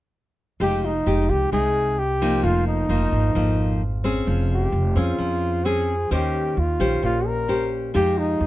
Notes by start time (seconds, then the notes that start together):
0.60 F1 F3 G#3 D#4 G4
0.85 D#4
1.06 F1 G#3 D#4 G4
1.29 C2 G4
1.52 C2 C3 G#3 D#4 G#4
1.99 G4
2.22 F3 A#3 D#4
2.43 F1 F2 F4
2.68 D#4
2.89 F1 F3 A#3 D#4
3.12 G#1
3.35 G#1 F2 F3 A#3 D#4
4.04 C4 C#4 G#4
4.27 F1 F3
4.54 G4
4.72 F1
4.95 F2 C4 C#4 F4 G#4
5.19 F2 F3
5.65 C4 C#4 G#4
6.11 D#2 D#3 C#4 G4 C5
6.57 D#2 F4
6.80 A#1 C#4 G4 C5
7.03 A#1 A#2 F4
7.27 A#4
7.48 C#4 G4 C5
7.94 F2 F3 G#3 D#4 G4
8.18 D#4
8.41 F2